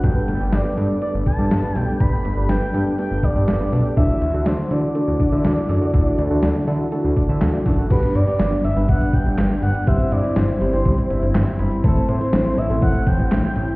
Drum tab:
CC |----------------|----------------|----------------|----------------|
HH |x-x-x-x-x-x-x-x-|x-x-x-x-x-x-x-o-|x-x-x-x-x-x-x-o-|x-x-x-x-x-x-x-o-|
CP |----------------|----------------|----------------|------------x---|
SD |----o-------o---|----o-------o---|----o-------o---|----o-------o---|
BD |o---------o-----|o---------o-----|o---------o-----|o---------o---o-|

CC |x---------------|----------------|----------------|
HH |xxxxxxoxxxxxxxxx|xxxxxxoxxxxxxxxx|xxxxxxoxxxxxxxxx|
CP |------------x---|------------x---|------------x---|
SD |----o-------o---|----o-------o---|----o-------o---|
BD |o-------o-o-----|o-------o-------|o-------o-o-----|